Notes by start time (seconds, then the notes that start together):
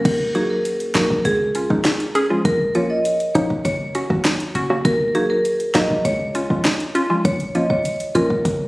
0.05 D#2 A#4, kick, closed hi-hat, crash
0.35 F#3 A#3 D#4 F#4 G#4, closed hi-hat
0.50 A#4
0.65 closed hi-hat
0.80 closed hi-hat
0.95 A#1 F#3 A#3 D#4 F#4 A#4, snare, closed hi-hat
1.10 kick
1.25 C#2 G#4, closed hi-hat
1.55 C#4 F4, closed hi-hat
1.70 F3 G#3 C#4 D#4, kick
1.85 snare, closed hi-hat
2.00 closed hi-hat
2.15 C#4 G#4, closed hi-hat
2.30 F3 G#3 C#4 F4
2.45 A#1 A#4, kick, closed hi-hat
2.75 F3 A#3 C#4 F4 C#5, closed hi-hat
2.90 D#5
3.05 closed hi-hat
3.20 closed hi-hat
3.35 A#1 F3 A#3 C#4 D#4 C#5, closed hi-hat
3.50 kick
3.65 F#1 C#5, kick, closed hi-hat
3.95 C#4 F#4, closed hi-hat
4.10 G#1 F#3 A#3 C#4 F#4, kick
4.25 snare, closed hi-hat
4.40 closed hi-hat
4.55 F#1 C#4 F#4, closed hi-hat
4.70 F#3 A#3 C#4 F#4
4.85 D#2 A#4, kick, closed hi-hat
5.15 F#3 A#3 D#4 F#4 G#4, closed hi-hat
5.30 A#4
5.45 closed hi-hat
5.60 closed hi-hat
5.75 A#1 F#3 A#3 D#4 F#4 D#5, snare, closed hi-hat
5.90 kick
6.05 C#2 C#5, closed hi-hat
6.35 C#4 F4, closed hi-hat
6.50 F3 G#3 C#4 F4, kick
6.65 snare, closed hi-hat
6.80 closed hi-hat
6.95 C#4 F4, closed hi-hat
7.10 F3 G#3 C#4 F4
7.25 A#1 C#5, kick, closed hi-hat
7.40 closed hi-hat
7.55 F3 A#3 C#4 F4 D#5, closed hi-hat
7.70 C#5, kick
7.85 closed hi-hat
8.00 closed hi-hat
8.15 A#1 F3 A#3 C#4 F4 A#4, closed hi-hat
8.30 kick
8.45 F#1, kick, closed hi-hat